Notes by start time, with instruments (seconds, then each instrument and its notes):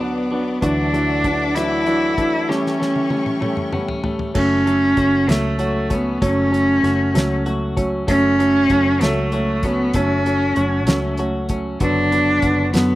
Already playing: fingered electric bass D2, clean electric guitar B3 F#4, cello B3, string section B4 D5 F#5 D6
0.00 grand piano F#3 B3 D4, clean electric guitar D4
0.31 grand piano F#3 B3 D4, clean electric guitar B3
0.61 fingered electric bass D2, grand piano E3 F#3 D4, clean electric guitar E3 F#4, cello D4, string section A4 E5 F#5 D6, kick, closed hi-hat
0.93 grand piano E3 F#3 D4, clean electric guitar A3, closed hi-hat
1.24 grand piano E3 F#3 D4, clean electric guitar D4, kick, closed hi-hat
1.55 grand piano E3 F#3 D4, clean electric guitar A3, cello E4, cross-stick, closed hi-hat
1.86 grand piano E3 F#3 D4, clean electric guitar D4, closed hi-hat
2.18 grand piano E3 F#3 D4, clean electric guitar A3, kick, closed hi-hat
2.48 clean electric guitar E3 G4, grand piano G3 A3 C#4, cello C#4, string section G5 C#6, snare
2.66 snare
2.79 grand piano G3 A3 C#4, clean electric guitar A3, snare
2.96 high tom
3.10 grand piano G3 A3 C#4, clean electric guitar C#4, high tom
3.26 mid tom
3.41 grand piano G3 A3 C#4, clean electric guitar A3, mid tom
3.57 mid tom
3.72 grand piano G3 A3 C#4, clean electric guitar B3, mid tom
3.88 clean electric guitar C#4, floor tom
4.03 grand piano G3 A3 C#4, clean electric guitar A3, floor tom
4.19 floor tom
4.34 fingered electric bass F#1, grand piano F#3 A3 C#4, clean electric guitar A3, cello C#4, kick, crash
4.66 grand piano F#3 A3 C#4, clean electric guitar A3, closed hi-hat
4.97 fingered electric bass F#1, grand piano F#3 A3 C#4, clean electric guitar F#4, kick, closed hi-hat
5.28 fingered electric bass C#2, grand piano F#3 A3 C#4, clean electric guitar A3, cello A3, snare, closed hi-hat
5.59 grand piano F#3 A3 C#4, clean electric guitar F#4, closed hi-hat
5.89 grand piano F#3 A3 C#4, clean electric guitar C#4, kick, closed hi-hat
5.94 cello B3
6.21 fingered electric bass F#1, grand piano F#3 A3 C#4, clean electric guitar A3, cello C#4, kick, closed hi-hat
6.51 grand piano F#3 A3 C#4, clean electric guitar A3, closed hi-hat
6.83 fingered electric bass F#1, grand piano F#3 A3 C#4, clean electric guitar F#4, snare, closed hi-hat
7.14 fingered electric bass C#2, grand piano F#3 A3 C#4, clean electric guitar A3, snare, closed hi-hat
7.46 grand piano F#3 A3 C#4, clean electric guitar F#4, closed hi-hat
7.77 grand piano F#3 A3 C#4, clean electric guitar C#4, kick, closed hi-hat
8.07 fingered electric bass F#1, grand piano F#3 A3 C#4, clean electric guitar A3, cello C#4, kick, closed hi-hat
8.39 grand piano F#3 A3 C#4, clean electric guitar A3, closed hi-hat
8.70 fingered electric bass F#1, grand piano F#3 A3 C#4, clean electric guitar F#4, kick, closed hi-hat
9.01 fingered electric bass C#2, grand piano F#3 A3 C#4, clean electric guitar A3, cello A3, snare, closed hi-hat
9.32 grand piano F#3 A3 C#4, clean electric guitar F#4, closed hi-hat
9.63 grand piano F#3 A3 C#4, cello B3, clean electric guitar C#4, kick, closed hi-hat
9.94 fingered electric bass F#1, grand piano F#3 A3 C#4, clean electric guitar A3, cello C#4, kick, closed hi-hat
10.25 grand piano F#3 A3 C#4, clean electric guitar A3, closed hi-hat
10.56 fingered electric bass F#1, grand piano F#3 A3 C#4, clean electric guitar F#4, closed hi-hat
10.87 fingered electric bass C#2, grand piano F#3 A3 C#4, clean electric guitar A3, snare, closed hi-hat
11.17 grand piano F#3 A3 C#4, clean electric guitar F#4, closed hi-hat
11.49 grand piano F#3 A3 C#4, clean electric guitar C#4, kick, closed hi-hat
11.80 fingered electric bass F#1, grand piano D3 F#3 B3, clean electric guitar F#3, cello D4, kick, closed hi-hat
12.12 grand piano D3 F#3 B3, clean electric guitar B3, closed hi-hat
12.42 fingered electric bass F#1, grand piano D3 F#3 B3, clean electric guitar F#4, kick, closed hi-hat
12.73 fingered electric bass F#2, grand piano D3 F#3 B3, clean electric guitar B3, cello B3, snare, closed hi-hat